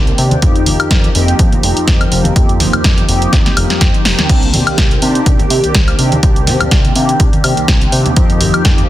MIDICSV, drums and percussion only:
0, 0, Header, 1, 2, 480
1, 0, Start_track
1, 0, Tempo, 483871
1, 421, Time_signature, 4, 2, 24, 8
1, 8821, End_track
2, 0, Start_track
2, 0, Title_t, "Drums"
2, 72, Note_on_c, 9, 42, 38
2, 171, Note_off_c, 9, 42, 0
2, 180, Note_on_c, 9, 46, 99
2, 180, Note_on_c, 9, 82, 97
2, 279, Note_off_c, 9, 46, 0
2, 279, Note_off_c, 9, 82, 0
2, 309, Note_on_c, 9, 82, 38
2, 311, Note_on_c, 9, 42, 40
2, 311, Note_on_c, 9, 63, 88
2, 408, Note_off_c, 9, 82, 0
2, 410, Note_off_c, 9, 42, 0
2, 411, Note_off_c, 9, 63, 0
2, 419, Note_on_c, 9, 42, 91
2, 421, Note_on_c, 9, 36, 106
2, 518, Note_off_c, 9, 42, 0
2, 520, Note_off_c, 9, 36, 0
2, 551, Note_on_c, 9, 42, 39
2, 553, Note_on_c, 9, 82, 36
2, 650, Note_off_c, 9, 42, 0
2, 652, Note_off_c, 9, 82, 0
2, 659, Note_on_c, 9, 46, 97
2, 659, Note_on_c, 9, 63, 91
2, 661, Note_on_c, 9, 82, 99
2, 758, Note_off_c, 9, 46, 0
2, 758, Note_off_c, 9, 63, 0
2, 760, Note_off_c, 9, 82, 0
2, 788, Note_on_c, 9, 82, 40
2, 792, Note_on_c, 9, 42, 38
2, 792, Note_on_c, 9, 76, 81
2, 887, Note_off_c, 9, 82, 0
2, 891, Note_off_c, 9, 42, 0
2, 891, Note_off_c, 9, 76, 0
2, 900, Note_on_c, 9, 36, 114
2, 900, Note_on_c, 9, 42, 95
2, 901, Note_on_c, 9, 38, 112
2, 999, Note_off_c, 9, 42, 0
2, 1000, Note_off_c, 9, 36, 0
2, 1000, Note_off_c, 9, 38, 0
2, 1030, Note_on_c, 9, 63, 68
2, 1032, Note_on_c, 9, 42, 40
2, 1037, Note_on_c, 9, 82, 35
2, 1129, Note_off_c, 9, 63, 0
2, 1131, Note_off_c, 9, 42, 0
2, 1136, Note_off_c, 9, 82, 0
2, 1139, Note_on_c, 9, 82, 95
2, 1140, Note_on_c, 9, 46, 102
2, 1238, Note_off_c, 9, 82, 0
2, 1240, Note_off_c, 9, 46, 0
2, 1273, Note_on_c, 9, 42, 40
2, 1273, Note_on_c, 9, 82, 39
2, 1372, Note_off_c, 9, 42, 0
2, 1372, Note_off_c, 9, 82, 0
2, 1380, Note_on_c, 9, 42, 96
2, 1381, Note_on_c, 9, 36, 112
2, 1479, Note_off_c, 9, 42, 0
2, 1480, Note_off_c, 9, 36, 0
2, 1508, Note_on_c, 9, 64, 86
2, 1512, Note_on_c, 9, 42, 41
2, 1514, Note_on_c, 9, 63, 86
2, 1514, Note_on_c, 9, 82, 39
2, 1608, Note_off_c, 9, 64, 0
2, 1611, Note_off_c, 9, 42, 0
2, 1613, Note_off_c, 9, 63, 0
2, 1613, Note_off_c, 9, 82, 0
2, 1615, Note_on_c, 9, 82, 97
2, 1621, Note_on_c, 9, 46, 91
2, 1714, Note_off_c, 9, 82, 0
2, 1720, Note_off_c, 9, 46, 0
2, 1748, Note_on_c, 9, 82, 35
2, 1753, Note_on_c, 9, 42, 40
2, 1847, Note_off_c, 9, 82, 0
2, 1852, Note_off_c, 9, 42, 0
2, 1861, Note_on_c, 9, 36, 115
2, 1861, Note_on_c, 9, 38, 115
2, 1861, Note_on_c, 9, 42, 94
2, 1861, Note_on_c, 9, 82, 50
2, 1868, Note_on_c, 9, 63, 65
2, 1960, Note_off_c, 9, 36, 0
2, 1960, Note_off_c, 9, 42, 0
2, 1961, Note_off_c, 9, 38, 0
2, 1961, Note_off_c, 9, 82, 0
2, 1968, Note_off_c, 9, 63, 0
2, 1991, Note_on_c, 9, 82, 39
2, 1992, Note_on_c, 9, 42, 41
2, 1992, Note_on_c, 9, 76, 82
2, 2091, Note_off_c, 9, 42, 0
2, 2091, Note_off_c, 9, 76, 0
2, 2091, Note_off_c, 9, 82, 0
2, 2100, Note_on_c, 9, 46, 94
2, 2106, Note_on_c, 9, 82, 94
2, 2199, Note_off_c, 9, 46, 0
2, 2205, Note_off_c, 9, 82, 0
2, 2224, Note_on_c, 9, 63, 93
2, 2232, Note_on_c, 9, 42, 41
2, 2233, Note_on_c, 9, 82, 41
2, 2323, Note_off_c, 9, 63, 0
2, 2331, Note_off_c, 9, 42, 0
2, 2332, Note_off_c, 9, 82, 0
2, 2341, Note_on_c, 9, 36, 115
2, 2341, Note_on_c, 9, 42, 93
2, 2440, Note_off_c, 9, 36, 0
2, 2440, Note_off_c, 9, 42, 0
2, 2467, Note_on_c, 9, 82, 35
2, 2473, Note_on_c, 9, 42, 39
2, 2566, Note_off_c, 9, 82, 0
2, 2572, Note_off_c, 9, 42, 0
2, 2579, Note_on_c, 9, 82, 94
2, 2581, Note_on_c, 9, 38, 38
2, 2581, Note_on_c, 9, 46, 100
2, 2586, Note_on_c, 9, 63, 94
2, 2678, Note_off_c, 9, 82, 0
2, 2680, Note_off_c, 9, 46, 0
2, 2681, Note_off_c, 9, 38, 0
2, 2685, Note_off_c, 9, 63, 0
2, 2707, Note_on_c, 9, 64, 77
2, 2709, Note_on_c, 9, 82, 44
2, 2712, Note_on_c, 9, 42, 40
2, 2712, Note_on_c, 9, 76, 78
2, 2807, Note_off_c, 9, 64, 0
2, 2808, Note_off_c, 9, 82, 0
2, 2812, Note_off_c, 9, 42, 0
2, 2812, Note_off_c, 9, 76, 0
2, 2820, Note_on_c, 9, 42, 97
2, 2821, Note_on_c, 9, 36, 114
2, 2821, Note_on_c, 9, 38, 123
2, 2919, Note_off_c, 9, 42, 0
2, 2920, Note_off_c, 9, 36, 0
2, 2920, Note_off_c, 9, 38, 0
2, 2948, Note_on_c, 9, 63, 64
2, 2948, Note_on_c, 9, 82, 40
2, 2953, Note_on_c, 9, 42, 40
2, 3047, Note_off_c, 9, 63, 0
2, 3047, Note_off_c, 9, 82, 0
2, 3052, Note_off_c, 9, 42, 0
2, 3061, Note_on_c, 9, 46, 99
2, 3063, Note_on_c, 9, 82, 98
2, 3160, Note_off_c, 9, 46, 0
2, 3162, Note_off_c, 9, 82, 0
2, 3191, Note_on_c, 9, 82, 39
2, 3193, Note_on_c, 9, 42, 41
2, 3290, Note_off_c, 9, 82, 0
2, 3292, Note_off_c, 9, 42, 0
2, 3301, Note_on_c, 9, 36, 113
2, 3301, Note_on_c, 9, 38, 60
2, 3301, Note_on_c, 9, 42, 90
2, 3400, Note_off_c, 9, 36, 0
2, 3401, Note_off_c, 9, 38, 0
2, 3401, Note_off_c, 9, 42, 0
2, 3422, Note_on_c, 9, 82, 39
2, 3425, Note_on_c, 9, 63, 89
2, 3433, Note_on_c, 9, 38, 59
2, 3433, Note_on_c, 9, 42, 42
2, 3521, Note_off_c, 9, 82, 0
2, 3524, Note_off_c, 9, 63, 0
2, 3532, Note_off_c, 9, 38, 0
2, 3532, Note_off_c, 9, 42, 0
2, 3538, Note_on_c, 9, 82, 96
2, 3540, Note_on_c, 9, 46, 98
2, 3540, Note_on_c, 9, 76, 75
2, 3637, Note_off_c, 9, 82, 0
2, 3639, Note_off_c, 9, 46, 0
2, 3639, Note_off_c, 9, 76, 0
2, 3670, Note_on_c, 9, 82, 40
2, 3672, Note_on_c, 9, 38, 66
2, 3672, Note_on_c, 9, 42, 40
2, 3769, Note_off_c, 9, 82, 0
2, 3772, Note_off_c, 9, 38, 0
2, 3772, Note_off_c, 9, 42, 0
2, 3777, Note_on_c, 9, 63, 59
2, 3777, Note_on_c, 9, 82, 51
2, 3780, Note_on_c, 9, 36, 110
2, 3780, Note_on_c, 9, 38, 89
2, 3780, Note_on_c, 9, 42, 100
2, 3876, Note_off_c, 9, 63, 0
2, 3876, Note_off_c, 9, 82, 0
2, 3879, Note_off_c, 9, 36, 0
2, 3879, Note_off_c, 9, 38, 0
2, 3879, Note_off_c, 9, 42, 0
2, 3910, Note_on_c, 9, 82, 34
2, 3912, Note_on_c, 9, 42, 40
2, 4009, Note_off_c, 9, 82, 0
2, 4011, Note_off_c, 9, 42, 0
2, 4020, Note_on_c, 9, 38, 94
2, 4020, Note_on_c, 9, 46, 97
2, 4119, Note_off_c, 9, 38, 0
2, 4119, Note_off_c, 9, 46, 0
2, 4148, Note_on_c, 9, 82, 45
2, 4152, Note_on_c, 9, 38, 91
2, 4152, Note_on_c, 9, 42, 43
2, 4158, Note_on_c, 9, 63, 88
2, 4248, Note_off_c, 9, 82, 0
2, 4251, Note_off_c, 9, 38, 0
2, 4251, Note_off_c, 9, 42, 0
2, 4258, Note_off_c, 9, 63, 0
2, 4258, Note_on_c, 9, 82, 57
2, 4260, Note_on_c, 9, 36, 112
2, 4260, Note_on_c, 9, 42, 94
2, 4260, Note_on_c, 9, 49, 74
2, 4357, Note_off_c, 9, 82, 0
2, 4359, Note_off_c, 9, 36, 0
2, 4359, Note_off_c, 9, 42, 0
2, 4359, Note_off_c, 9, 49, 0
2, 4392, Note_on_c, 9, 42, 39
2, 4392, Note_on_c, 9, 82, 41
2, 4491, Note_off_c, 9, 42, 0
2, 4491, Note_off_c, 9, 82, 0
2, 4500, Note_on_c, 9, 46, 100
2, 4500, Note_on_c, 9, 63, 94
2, 4505, Note_on_c, 9, 82, 96
2, 4599, Note_off_c, 9, 46, 0
2, 4599, Note_off_c, 9, 63, 0
2, 4604, Note_off_c, 9, 82, 0
2, 4632, Note_on_c, 9, 42, 40
2, 4632, Note_on_c, 9, 76, 75
2, 4731, Note_off_c, 9, 42, 0
2, 4731, Note_off_c, 9, 76, 0
2, 4740, Note_on_c, 9, 36, 115
2, 4741, Note_on_c, 9, 38, 124
2, 4741, Note_on_c, 9, 42, 96
2, 4840, Note_off_c, 9, 36, 0
2, 4840, Note_off_c, 9, 42, 0
2, 4841, Note_off_c, 9, 38, 0
2, 4867, Note_on_c, 9, 82, 36
2, 4872, Note_on_c, 9, 42, 41
2, 4875, Note_on_c, 9, 63, 66
2, 4966, Note_off_c, 9, 82, 0
2, 4972, Note_off_c, 9, 42, 0
2, 4972, Note_on_c, 9, 82, 97
2, 4974, Note_off_c, 9, 63, 0
2, 4980, Note_on_c, 9, 46, 106
2, 5071, Note_off_c, 9, 82, 0
2, 5079, Note_off_c, 9, 46, 0
2, 5104, Note_on_c, 9, 82, 38
2, 5112, Note_on_c, 9, 42, 42
2, 5203, Note_off_c, 9, 82, 0
2, 5211, Note_off_c, 9, 42, 0
2, 5220, Note_on_c, 9, 36, 117
2, 5220, Note_on_c, 9, 42, 94
2, 5319, Note_off_c, 9, 42, 0
2, 5320, Note_off_c, 9, 36, 0
2, 5348, Note_on_c, 9, 63, 90
2, 5351, Note_on_c, 9, 42, 41
2, 5351, Note_on_c, 9, 64, 88
2, 5353, Note_on_c, 9, 82, 41
2, 5447, Note_off_c, 9, 63, 0
2, 5451, Note_off_c, 9, 42, 0
2, 5451, Note_off_c, 9, 64, 0
2, 5452, Note_off_c, 9, 82, 0
2, 5458, Note_on_c, 9, 82, 101
2, 5460, Note_on_c, 9, 46, 102
2, 5557, Note_off_c, 9, 82, 0
2, 5559, Note_off_c, 9, 46, 0
2, 5592, Note_on_c, 9, 42, 41
2, 5594, Note_on_c, 9, 82, 41
2, 5691, Note_off_c, 9, 42, 0
2, 5693, Note_off_c, 9, 82, 0
2, 5699, Note_on_c, 9, 42, 96
2, 5700, Note_on_c, 9, 38, 125
2, 5701, Note_on_c, 9, 36, 122
2, 5701, Note_on_c, 9, 63, 68
2, 5704, Note_on_c, 9, 82, 55
2, 5799, Note_off_c, 9, 38, 0
2, 5799, Note_off_c, 9, 42, 0
2, 5800, Note_off_c, 9, 36, 0
2, 5801, Note_off_c, 9, 63, 0
2, 5804, Note_off_c, 9, 82, 0
2, 5831, Note_on_c, 9, 42, 41
2, 5831, Note_on_c, 9, 76, 79
2, 5930, Note_off_c, 9, 42, 0
2, 5930, Note_off_c, 9, 76, 0
2, 5939, Note_on_c, 9, 46, 100
2, 5942, Note_on_c, 9, 82, 95
2, 6038, Note_off_c, 9, 46, 0
2, 6042, Note_off_c, 9, 82, 0
2, 6071, Note_on_c, 9, 42, 40
2, 6073, Note_on_c, 9, 82, 41
2, 6075, Note_on_c, 9, 63, 91
2, 6170, Note_off_c, 9, 42, 0
2, 6172, Note_off_c, 9, 82, 0
2, 6174, Note_off_c, 9, 63, 0
2, 6179, Note_on_c, 9, 42, 93
2, 6181, Note_on_c, 9, 36, 117
2, 6279, Note_off_c, 9, 42, 0
2, 6280, Note_off_c, 9, 36, 0
2, 6312, Note_on_c, 9, 42, 40
2, 6317, Note_on_c, 9, 82, 35
2, 6411, Note_off_c, 9, 42, 0
2, 6415, Note_off_c, 9, 82, 0
2, 6415, Note_on_c, 9, 63, 92
2, 6415, Note_on_c, 9, 82, 100
2, 6420, Note_on_c, 9, 46, 106
2, 6421, Note_on_c, 9, 38, 38
2, 6514, Note_off_c, 9, 63, 0
2, 6515, Note_off_c, 9, 82, 0
2, 6520, Note_off_c, 9, 38, 0
2, 6520, Note_off_c, 9, 46, 0
2, 6552, Note_on_c, 9, 42, 38
2, 6552, Note_on_c, 9, 76, 73
2, 6553, Note_on_c, 9, 82, 41
2, 6555, Note_on_c, 9, 64, 79
2, 6651, Note_off_c, 9, 42, 0
2, 6651, Note_off_c, 9, 76, 0
2, 6652, Note_off_c, 9, 82, 0
2, 6655, Note_off_c, 9, 64, 0
2, 6660, Note_on_c, 9, 38, 124
2, 6660, Note_on_c, 9, 42, 90
2, 6661, Note_on_c, 9, 36, 123
2, 6759, Note_off_c, 9, 42, 0
2, 6760, Note_off_c, 9, 36, 0
2, 6760, Note_off_c, 9, 38, 0
2, 6791, Note_on_c, 9, 63, 70
2, 6792, Note_on_c, 9, 42, 41
2, 6795, Note_on_c, 9, 82, 42
2, 6890, Note_off_c, 9, 63, 0
2, 6891, Note_off_c, 9, 42, 0
2, 6894, Note_off_c, 9, 82, 0
2, 6896, Note_on_c, 9, 82, 93
2, 6900, Note_on_c, 9, 46, 105
2, 6995, Note_off_c, 9, 82, 0
2, 6999, Note_off_c, 9, 46, 0
2, 7028, Note_on_c, 9, 82, 44
2, 7032, Note_on_c, 9, 42, 41
2, 7127, Note_off_c, 9, 82, 0
2, 7131, Note_off_c, 9, 42, 0
2, 7141, Note_on_c, 9, 36, 120
2, 7141, Note_on_c, 9, 42, 93
2, 7240, Note_off_c, 9, 36, 0
2, 7240, Note_off_c, 9, 42, 0
2, 7263, Note_on_c, 9, 82, 35
2, 7272, Note_on_c, 9, 42, 40
2, 7273, Note_on_c, 9, 63, 93
2, 7363, Note_off_c, 9, 82, 0
2, 7371, Note_off_c, 9, 42, 0
2, 7373, Note_off_c, 9, 63, 0
2, 7380, Note_on_c, 9, 46, 106
2, 7380, Note_on_c, 9, 76, 78
2, 7384, Note_on_c, 9, 82, 84
2, 7479, Note_off_c, 9, 46, 0
2, 7479, Note_off_c, 9, 76, 0
2, 7483, Note_off_c, 9, 82, 0
2, 7512, Note_on_c, 9, 42, 40
2, 7513, Note_on_c, 9, 82, 41
2, 7612, Note_off_c, 9, 42, 0
2, 7612, Note_off_c, 9, 82, 0
2, 7617, Note_on_c, 9, 82, 55
2, 7620, Note_on_c, 9, 42, 90
2, 7621, Note_on_c, 9, 36, 125
2, 7621, Note_on_c, 9, 38, 127
2, 7621, Note_on_c, 9, 63, 65
2, 7716, Note_off_c, 9, 82, 0
2, 7720, Note_off_c, 9, 36, 0
2, 7720, Note_off_c, 9, 38, 0
2, 7720, Note_off_c, 9, 42, 0
2, 7720, Note_off_c, 9, 63, 0
2, 7750, Note_on_c, 9, 82, 38
2, 7752, Note_on_c, 9, 42, 39
2, 7849, Note_off_c, 9, 82, 0
2, 7851, Note_off_c, 9, 42, 0
2, 7860, Note_on_c, 9, 46, 104
2, 7865, Note_on_c, 9, 82, 81
2, 7959, Note_off_c, 9, 46, 0
2, 7964, Note_off_c, 9, 82, 0
2, 7989, Note_on_c, 9, 82, 41
2, 7992, Note_on_c, 9, 42, 40
2, 7994, Note_on_c, 9, 63, 92
2, 8088, Note_off_c, 9, 82, 0
2, 8091, Note_off_c, 9, 42, 0
2, 8093, Note_off_c, 9, 63, 0
2, 8099, Note_on_c, 9, 42, 90
2, 8100, Note_on_c, 9, 36, 125
2, 8199, Note_off_c, 9, 42, 0
2, 8200, Note_off_c, 9, 36, 0
2, 8231, Note_on_c, 9, 42, 38
2, 8234, Note_on_c, 9, 82, 38
2, 8330, Note_off_c, 9, 42, 0
2, 8333, Note_off_c, 9, 82, 0
2, 8334, Note_on_c, 9, 82, 90
2, 8338, Note_on_c, 9, 46, 107
2, 8343, Note_on_c, 9, 63, 100
2, 8433, Note_off_c, 9, 82, 0
2, 8438, Note_off_c, 9, 46, 0
2, 8442, Note_off_c, 9, 63, 0
2, 8471, Note_on_c, 9, 42, 37
2, 8471, Note_on_c, 9, 76, 75
2, 8475, Note_on_c, 9, 82, 38
2, 8570, Note_off_c, 9, 42, 0
2, 8570, Note_off_c, 9, 76, 0
2, 8575, Note_off_c, 9, 82, 0
2, 8579, Note_on_c, 9, 42, 88
2, 8580, Note_on_c, 9, 36, 123
2, 8580, Note_on_c, 9, 38, 124
2, 8678, Note_off_c, 9, 42, 0
2, 8679, Note_off_c, 9, 36, 0
2, 8679, Note_off_c, 9, 38, 0
2, 8699, Note_on_c, 9, 63, 69
2, 8711, Note_on_c, 9, 82, 39
2, 8712, Note_on_c, 9, 42, 38
2, 8798, Note_off_c, 9, 63, 0
2, 8810, Note_off_c, 9, 82, 0
2, 8811, Note_off_c, 9, 42, 0
2, 8821, End_track
0, 0, End_of_file